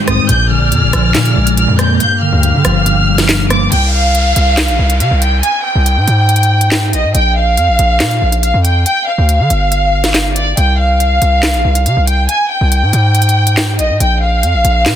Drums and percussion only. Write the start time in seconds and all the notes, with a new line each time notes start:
0.08 cross-stick, closed hi-hat
0.29 closed hi-hat
0.72 closed hi-hat
0.93 cross-stick, closed hi-hat
1.15 snare, clap, closed hi-hat
1.25 closed hi-hat
1.47 closed hi-hat
1.57 closed hi-hat
1.79 cross-stick, closed hi-hat
2.00 closed hi-hat
2.43 closed hi-hat
2.65 cross-stick, closed hi-hat
2.86 closed hi-hat
3.18 snare, closed hi-hat
3.29 snare, clap, closed hi-hat
3.50 cross-stick, closed hi-hat
3.72 closed hi-hat
4.15 closed hi-hat
4.36 closed hi-hat
4.57 snare, clap, closed hi-hat
4.68 closed hi-hat
4.90 closed hi-hat
5.00 closed hi-hat
5.22 closed hi-hat
5.43 closed hi-hat
5.86 closed hi-hat
6.08 closed hi-hat
6.29 closed hi-hat
6.36 closed hi-hat
6.43 closed hi-hat
6.61 closed hi-hat
6.72 snare, clap, closed hi-hat
6.93 closed hi-hat
7.15 closed hi-hat
7.57 closed hi-hat
7.79 closed hi-hat
8.00 snare, clap, closed hi-hat
8.11 closed hi-hat
8.32 closed hi-hat
8.43 closed hi-hat
8.65 closed hi-hat
8.86 closed hi-hat
9.29 closed hi-hat
9.50 closed hi-hat
9.72 closed hi-hat
10.04 snare, closed hi-hat
10.14 snare, clap, closed hi-hat
10.36 closed hi-hat
10.57 closed hi-hat
11.00 closed hi-hat
11.22 closed hi-hat
11.43 snare, clap, closed hi-hat
11.54 closed hi-hat
11.75 closed hi-hat
11.86 closed hi-hat
12.07 closed hi-hat
12.29 closed hi-hat
12.72 closed hi-hat
12.93 closed hi-hat
13.15 closed hi-hat
13.22 closed hi-hat
13.29 closed hi-hat
13.47 closed hi-hat
13.57 snare, clap, closed hi-hat
13.79 closed hi-hat
14.00 closed hi-hat
14.43 closed hi-hat
14.65 closed hi-hat
14.86 snare, clap, closed hi-hat